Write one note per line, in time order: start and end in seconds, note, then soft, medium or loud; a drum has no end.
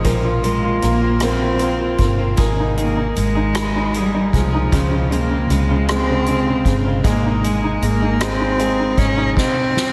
0.00 0.43 A#2 medium
0.00 0.46 F3 medium
0.04 0.79 A#1 medium
0.04 0.42 F3 medium
0.04 0.43 A#3 medium
0.04 0.42 A#3 medium
0.04 0.44 C4 medium
0.04 0.44 F4 medium
0.04 kick medium
0.04 closed hi-hat medium
0.25 0.63 F4 medium
0.43 0.63 F3 medium
0.43 0.82 G#3 medium
0.43 0.63 A#3 medium
0.43 0.82 A#3 soft
0.43 0.63 C4 medium
0.43 0.62 F4 medium
0.43 closed hi-hat soft
0.63 1.03 A#3 soft
0.63 1.02 C4 soft
0.63 1.01 F4 soft
0.82 1.96 A#1 medium
0.82 1.25 A#3 medium
0.82 1.21 A#3 soft
0.82 cross-stick soft
0.82 closed hi-hat soft
1.02 1.21 A#3 soft
1.02 1.21 C4 soft
1.02 1.22 F4 soft
1.02 1.41 F4 soft
1.20 1.61 A#2 medium
1.20 1.59 F3 medium
1.20 1.60 A#3 medium
1.20 1.61 C4 medium
1.20 2.10 C4 medium
1.20 1.61 F4 medium
1.20 cross-stick medium
1.20 closed hi-hat medium
1.42 1.80 F4 soft
1.59 1.80 F3 soft
1.59 2.00 A#3 soft
1.59 1.80 A#3 medium
1.59 1.79 C4 medium
1.59 1.78 F4 medium
1.59 closed hi-hat soft
1.79 2.19 A#3 soft
1.79 2.18 C4 soft
1.79 2.17 F4 soft
1.79 2.19 F4 soft
1.98 2.36 G1 medium
1.98 2.38 A#3 soft
1.98 kick medium
1.98 closed hi-hat soft
2.18 2.36 A#3 soft
2.18 2.38 C4 soft
2.18 2.38 F4 soft
2.18 2.39 F4 soft
2.37 3.13 G#1 medium
2.37 2.75 G#3 medium
2.37 2.76 A#3 medium
2.37 4.69 A#3 medium
2.37 2.76 D#4 medium
2.37 2.77 G#4 medium
2.37 kick medium
2.37 closed hi-hat medium
2.60 2.96 D#4 medium
2.76 4.30 D#3 soft
2.76 2.97 G#3 medium
2.76 2.97 A#3 medium
2.76 2.96 D#4 medium
2.76 2.94 G#4 medium
2.76 closed hi-hat soft
2.81 3.16 A#3 medium
2.96 3.37 A#3 soft
2.96 3.35 D#4 soft
2.96 3.34 G#4 soft
3.16 4.30 G#1 medium
3.16 3.98 G#3 medium
3.16 closed hi-hat soft
3.35 3.54 A#3 soft
3.35 3.55 D#4 soft
3.35 3.74 D#4 soft
3.35 3.56 G#4 soft
3.55 3.93 G#3 medium
3.55 3.94 A#3 medium
3.55 3.94 D#4 medium
3.55 3.96 G#4 medium
3.55 cross-stick loud
3.55 closed hi-hat medium
3.76 4.13 D#4 soft
3.94 4.34 G3 medium
3.94 4.14 G#3 medium
3.94 4.14 A#3 medium
3.94 4.13 D#4 medium
3.94 4.12 G#4 medium
3.94 closed hi-hat soft
4.13 4.54 A#3 soft
4.13 4.53 D#4 soft
4.13 4.51 G#4 soft
4.33 4.70 C2 medium
4.33 5.14 F3 medium
4.33 4.72 G#3 soft
4.33 kick medium
4.33 closed hi-hat soft
4.53 4.73 A#3 soft
4.53 4.73 D#4 soft
4.53 4.72 G#4 soft
4.72 5.46 C#2 medium
4.72 5.11 C#3 medium
4.72 4.90 C#3 medium
4.72 5.10 F3 medium
4.72 5.10 G#3 medium
4.72 5.11 C4 medium
4.72 5.12 F4 medium
4.72 kick loud
4.72 closed hi-hat medium
4.91 5.10 C#3 soft
5.11 5.29 C#3 soft
5.11 5.31 F3 medium
5.11 5.31 G#3 medium
5.11 5.53 A#3 medium
5.11 5.31 C4 medium
5.11 5.29 F4 medium
5.11 closed hi-hat soft
5.31 5.49 C#3 medium
5.31 5.70 G#3 soft
5.31 5.69 C4 soft
5.31 5.68 F4 soft
5.50 6.62 C#2 medium
5.50 5.69 C#3 soft
5.50 5.89 G#3 medium
5.50 cross-stick soft
5.50 closed hi-hat soft
5.69 6.08 C#3 soft
5.69 5.89 G#3 soft
5.69 5.89 C4 soft
5.69 5.89 F4 soft
5.88 6.28 C#3 medium
5.88 6.26 F3 medium
5.88 6.27 G#3 medium
5.88 7.02 G#3 medium
5.88 6.28 C4 medium
5.88 6.73 C4 medium
5.88 6.28 F4 medium
5.88 cross-stick loud
5.88 closed hi-hat medium
6.10 6.27 C#3 medium
6.26 6.47 C#3 soft
6.26 6.47 F3 medium
6.26 6.47 G#3 medium
6.26 6.46 C4 medium
6.26 6.45 F4 medium
6.26 closed hi-hat soft
6.46 6.66 C#3 medium
6.46 6.86 G#3 soft
6.46 6.85 C4 soft
6.46 6.84 F4 medium
6.65 7.02 G1 medium
6.65 6.85 C#3 soft
6.65 kick medium
6.65 closed hi-hat soft
6.85 7.05 C#3 soft
6.85 7.03 G#3 soft
6.85 7.05 C4 soft
6.85 7.04 F4 soft
7.04 7.78 G#1 loud
7.04 7.41 G#3 medium
7.04 7.43 G#3 medium
7.04 7.42 A#3 medium
7.04 7.45 A#3 medium
7.04 7.43 D#4 medium
7.04 7.43 G#4 medium
7.04 kick loud
7.04 closed hi-hat medium
7.26 7.62 D#4 medium
7.42 7.62 G#3 medium
7.42 7.84 G#3 medium
7.42 7.81 G#3 soft
7.42 7.63 A#3 medium
7.42 7.62 D#4 medium
7.42 7.60 G#4 medium
7.42 closed hi-hat soft
7.62 8.02 A#3 soft
7.62 8.01 D#4 medium
7.62 8.01 D#4 soft
7.62 7.99 G#4 medium
7.82 8.94 G#1 medium
7.82 8.19 G#3 soft
7.82 8.23 A#3 loud
7.82 closed hi-hat soft
8.01 8.20 A#3 soft
8.01 8.20 D#4 soft
8.01 8.38 D#4 medium
8.01 8.20 G#4 soft
8.20 8.57 G#3 medium
8.20 8.58 G#3 medium
8.20 8.58 A#3 medium
8.20 8.99 C4 loud
8.20 8.59 D#4 medium
8.20 8.60 G#4 medium
8.20 cross-stick medium
8.20 closed hi-hat medium
8.40 8.78 D#4 medium
8.59 8.79 G#3 medium
8.59 8.97 G#3 medium
8.59 8.79 A#3 medium
8.59 8.78 D#4 medium
8.59 8.77 G#4 medium
8.59 closed hi-hat soft
8.78 9.19 A#3 soft
8.78 9.16 D#4 medium
8.78 9.18 D#4 medium
8.78 9.17 G#4 medium
8.98 9.35 G#1 medium
8.98 9.36 G#3 soft
8.98 9.36 C#4 medium
8.98 kick medium
8.98 closed hi-hat soft
9.17 9.39 A#3 soft
9.17 9.37 D#4 medium
9.17 9.38 D#4 soft
9.17 9.37 G#4 medium
9.36 9.93 C4 loud
9.36 kick medium
9.36 snare soft
9.36 crash medium
9.77 snare medium